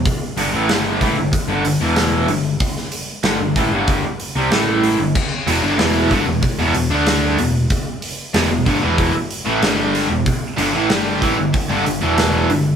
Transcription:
<<
  \new Staff \with { instrumentName = "Distorted electric guitar" } { \clef bass \time 4/4 \key g \major \tempo 4 = 94 r8 <g, d>16 <a, e>16 <g, d g>8 <a, e>16 <g, d>16 r16 <g, d>16 <g, d>16 <e, b, e>8. <g, d>8 | r4 <g, d>16 <g, d>16 <a, e>16 <g, d g>8 r8 <c g>16 <a, e a>8. <g, d>16 | r8 <e, b,>16 <g, d>16 <e, b, e>8 <g, d>16 <e, b,>16 r16 <e, b,>16 <e, b,>16 <d a d'>8. <e, b,>8 | r4 <e, b,>16 <e, b,>16 <g, d>16 <e, b, e>8 r8 <a, e>16 <g, d g>8. <e, b,>16 |
r8 <g, d>16 <a, e>16 <g, d g>8 <a, e>16 <g, d>16 r16 <g, d>16 <g, d>16 <e, b, e>8. <g, d>8 | }
  \new Staff \with { instrumentName = "Distorted electric guitar" } { \clef bass \time 4/4 \key g \major r1 | r1 | r8 <e, b,>16 <g, d>16 <e, b, e>8 <g, d>16 <e, b,>16 r16 <e, b,>16 <e, b,>16 <d a d'>8. <e, b,>8 | r4 <e, b,>16 <e, b,>16 <g, d>16 <e, b, e>8 r8 <a, e>16 <g, d g>8. <e, b,>16 |
r8 <g, d>16 <a, e>16 <g, d g>8 <a, e>16 <g, d>16 r16 <g, d>16 <g, d>16 <e, b, e>8. <g, d>8 | }
  \new Staff \with { instrumentName = "Overdriven electric guitar" } { \clef bass \time 4/4 \key g \major r8 <g, d>16 <a, e>16 <g, d g>8 <a, e>16 <g, d>16 r16 <g, d>16 <g, d>16 <e, b, e>8. <g, d>8 | r4 <g, d>16 <g, d>16 <a, e>16 <g, d g>8 r8 <c g>16 <a, e a>8. <g, d>16 | r8 <e, b,>16 <g, d>16 <e, b, e>8 <g, d>16 <e, b,>16 r16 <e, b,>16 <e, b,>16 <d a d'>8. <e, b,>8 | r4 <e, b,>16 <e, b,>16 <g, d>16 <e, b, e>8 r8 <a, e>16 <g, d g>8. <e, b,>16 |
r8 <g, d>16 <a, e>16 <g, d g>8 <a, e>16 <g, d>16 r16 <g, d>16 <g, d>16 <e, b, e>8. <g, d>8 | }
  \new Staff \with { instrumentName = "Picked electric bass" } { \clef bass \time 4/4 \key g \major r8 g,,16 a,,16 g,,8 a,,16 g,,16 r16 g,,16 g,,16 e,,8. g,,8 | r4 g,,16 g,,16 a,,16 g,,8 r8 c,16 a,,8. g,,16 | r8 e,,16 g,,16 e,,8 g,,16 e,,16 r16 e,,16 e,,16 d,8. e,,8 | r4 e,,16 e,,16 g,,16 e,,8 r8 a,,16 g,,8. e,,16 |
r8 g,,16 a,,16 g,,8 a,,16 g,,16 r16 g,,16 g,,16 e,,8. g,,8 | }
  \new DrumStaff \with { instrumentName = "Drums" } \drummode { \time 4/4 <hho bd>8 hho8 <hho sn>8 <hho bd sn>8 <hho bd>8 hho8 <hho sn>8 hho8 | <hho bd>16 sn16 hho8 <hho sn>8 <hho bd>8 <hho bd>8 hho8 <hho sn>8 hho8 | <cymc bd>8 hho8 <hho sn>8 <hho bd sn>8 <hho bd>8 hho8 <hho sn>8 hho8 | <hho bd>8 hho8 <hho sn>8 <hho bd>8 <hho bd>8 hho8 <hho sn>8 hho8 |
<hho bd>8 hho8 <hho sn>8 <hho bd sn>8 <hho bd>8 hho8 <hho sn>8 hho8 | }
>>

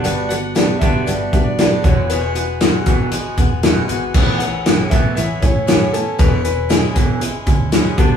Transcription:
<<
  \new Staff \with { instrumentName = "Grand piano" } { \time 4/4 \key a \major \tempo 4 = 117 r8 fis''4 e''4 e''16 d''8. cis''8 | b'2.~ b'8 r8 | r8 fis''4 e''8 e''8 cis''8 cis''8 a'8 | b'8 b'8 gis'2 r4 | }
  \new Staff \with { instrumentName = "Steel-string acoustic guitar" } { \time 4/4 \key a \major <g b d' fis'>8 <b d' fis'>8 <g b d' fis'>8 <b d' fis'>8 <g b d' fis'>8 <b d' fis'>8 <g b d' fis'>8 <e gis b fis'>8 | <e, b, e gis b fis'>8 <e gis b fis'>8 <e, b, e gis b fis'>8 <e gis b fis'>8 <e gis b fis'>8 <e gis b fis'>8 <e, b, e gis b fis'>8 <e gis b fis'>8 | <a, e b cis' e'>8 <b cis' e'>8 <a, e b cis' e'>8 <b cis' e'>8 <e b cis' e'>8 <b cis' e'>8 <a, e b cis' e'>8 <b cis' e'>8 | <e, b, e gis cis' e'>8 <e gis cis' e'>8 <e, b, e gis cis' e'>8 <e gis cis' e'>8 <e gis cis' e'>8 <e gis cis' e'>8 <e, b, e gis cis' e'>8 <b d' fis'>8 | }
  \new Staff \with { instrumentName = "Clean electric guitar" } { \clef bass \time 4/4 \key a \major <g b>8 <g b>8 <g b>8 <g b d'>8 <g b>8 <g b>8 <g b>8 <e, b, e>8 | <e, b,>8 <e, b,>8 <e, b,>8 <e, b, e>8 <e, b,>8 <e, b,>8 <e, b,>8 <e, b,>8 | <a, e b>8 <a, e>8 <a, e>8 <a, e b>8 <a, e>8 <a, e>8 <a, e>8 <a, e>8 | <e, b, e>8 <e, b,>8 <e, b,>8 <e, b, e>8 <e, b,>8 <e, b,>8 <e, b,>8 <g b d'>8 | }
  \new Staff \with { instrumentName = "Fingered electric bass" } { \clef bass \time 4/4 \key a \major g,,4. g,,8 g,,8 g,4 e,,8~ | e,,4. gis,,4 e,,4 gis,,8 | a,,4. a,,8 a,,8 a,4. | e,,4. gis,,4 d,4 g,,8 | }
  \new DrumStaff \with { instrumentName = "Drums" } \drummode { \time 4/4 hh8 hh8 <hh sn>8 <hh bd>8 hh8 <hh bd>8 <hh sn>8 <hh bd>8 | hh8 hh8 <hh sn>8 <hh bd>8 hh8 <hh bd>8 <hh sn>8 hh8 | <cymc bd>8 hh8 <hh sn>8 <hh bd>8 hh8 <hh bd>8 <hh sn>8 hh8 | <hh bd>8 hh8 <hh sn>8 <hh bd>8 hh8 <hh bd>8 <hh sn>8 <hh bd>8 | }
>>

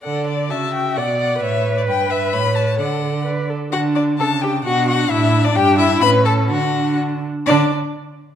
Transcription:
<<
  \new Staff \with { instrumentName = "Violin" } { \time 2/4 \key d \major \tempo 4 = 129 fis''8 d''8 a''8 g''8 | fis''8 fis''8 e''8. d''16 | g''8 e''8 b''8 a''8 | fis''4 r4 |
fis''8 d''8 a''8 g''8 | fis''8 fis''8 e''8. d''16 | g''8 e''8 b''8 a''8 | fis''4 r4 |
d''8 r4. | }
  \new Staff \with { instrumentName = "Violin" } { \time 2/4 \key d \major d''4 e''4 | d''4 cis''4 | b'4 cis''4 | d''4. r8 |
fis'8 d'8 a'8 g'8 | fis'8 fis'8 e'8. d'16 | g'8 e'8 b'8 a'8 | fis'4 r4 |
d'8 r4. | }
  \new Staff \with { instrumentName = "Viola" } { \time 2/4 \key d \major a'4 fis'4 | d''4 b'4~ | b'2 | a'4 b'8 a'8 |
d'4 d'4 | d'2 | d'4 cis'4 | d'4. r8 |
d'8 r4. | }
  \new Staff \with { instrumentName = "Cello" } { \clef bass \time 2/4 \key d \major d4 cis4 | b,4 a,4 | g,4 a,4 | d4. r8 |
d4 cis4 | b,4 a,4 | g,4 a,4 | d4. r8 |
d8 r4. | }
>>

